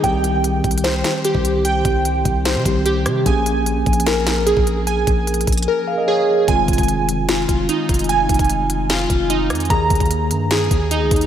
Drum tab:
HH |x-----------x-----------x-----------x---x---x---x-----------x-----------x-----------x-----------|x-----------x-----------x-----------x-----------x-----------x-----------x-----------x-----------|x-----------x-----------x-----------x---x---x---x-----------x-----------x-----------x-----------|x-----------x-----------x---x---x---x--x--x--x--------------------------------------------------|
SD |------------------------------------------------o-----------o-----------------------------------|------------------------------------------------o-----------------------------------r-----------|------------------------------------------------o-----------o-----------------------------------|------------------------------------------------------------------------------------------------|
BD |o-----------------------------------o-----------------------------------------o-----------------|------------o-----------------------o-----------------------o-----------------------------------|o-----------------------------------o-----------------------------------------o-----------------|------------o-----------------------o-----------------------------------------------------------|

HH |x-----------x--x--x--x--x-----------x-----------x-----------x-----------x-----------x--x--x--x--|x-----------x--x--x--x--x-----------x-----------x-----------x-----------x-----------x--x--x--x--|x-----------x--x--x--x--x-----------x-----------x-----------x-----------x-----------x--x--x-----|
SD |------------------------------------------------o-----------------------------------------------|------------------------------------------------o-----------------------------------r-----------|------------------------------------------------o-----------------------------------------------|
BD |o-----------o-----o-----------------------------------------o-----------------------o-----------|------------o-----o-----------------------------------------o-----------------------------------|o-----------o-----o-----------------------------------------o-----------------------o-----------|